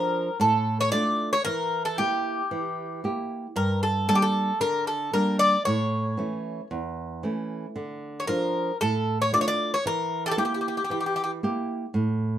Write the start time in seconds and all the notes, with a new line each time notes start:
Already playing: F3 D4 F4 A#4
0.40 A2 A4
0.81 C#5
0.92 A3 D4 F4 D5
1.33 C#5
1.45 E3 A#4
1.85 A4
1.98 A#3 E4 G4
2.51 E3
3.04 A#3 E4 G4
3.56 G2 A#4
3.83 A4
4.08 G3 A#3 D4 A4
4.15 G4
4.22 A4
4.60 D3 A#4
4.87 A4
5.13 G3 A#3 D4 A#4
5.39 D5
5.65 A2 C#5
6.17 E3 A3 C#4
6.71 E2
7.23 E3 A3 C#4
7.76 D3
8.20 C#5
8.27 F3 D4 F4 A#4
8.81 A2 A4
9.22 C#5
9.32 A3 D4 F4 D5
9.41 C#5
9.48 D5
9.74 C#5
9.86 E3 A#4
10.26 G4 A4
10.31 A4
10.37 A#3 E4 G4
10.45 G4
10.54 G4
10.61 G4
10.68 G4
10.77 G4
10.84 G4
10.90 E3 G4
11.00 G4
11.06 G4
11.16 G4
11.24 G4
11.43 A#3 E4 G4
11.94 A2